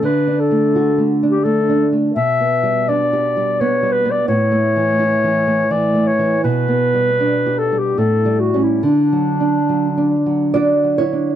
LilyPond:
<<
  \new Staff \with { instrumentName = "Clarinet" } { \time 3/4 \key d \major \tempo 4 = 84 b'8 a'4~ a'16 g'16 a'8. r16 | e''4 d''4 cis''8 b'16 d''16 | cis''2 d''8 cis''8 | b'4. a'16 g'16 a'8 fis'16 e'16 |
d'2 r4 | }
  \new Staff \with { instrumentName = "Nylon-string guitar" } { \time 3/4 \key d \major << { r2. | r2. | r2. | r2. |
r2 <fis' d''>8 <e' cis''>8 | } \\ { \tuplet 3/2 { d8 d'8 a8 fis'8 a8 d'8 a8 d'8 a8 } | \tuplet 3/2 { b,8 b8 g8 d'8 g'8 g8 b8 g8 b8 } | \tuplet 3/2 { a,8 a8 e8 e'8 e8 a8 e8 a8 e8 } | \tuplet 3/2 { b,8 b8 g8 d'8 g'8 g8 a,8 g8 <g cis'>8 } |
\tuplet 3/2 { d8 fis8 d'8 fis8 d'8 fis8 d'8 fis8 d'8 } | } >> }
>>